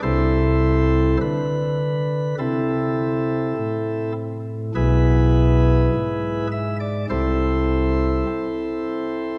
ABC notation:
X:1
M:4/4
L:1/16
Q:1/4=51
K:Am
V:1 name="Pipe organ"
[EAc]4 B4 [CEA]6 z2 | [E^GB]6 e d [EAc]8 |]
V:2 name="Pipe organ" clef=bass
[C,,C,]4 D,4 C,4 A,,4 | [B,,,B,,]4 ^G,,4 [C,,C,]4 C4 |]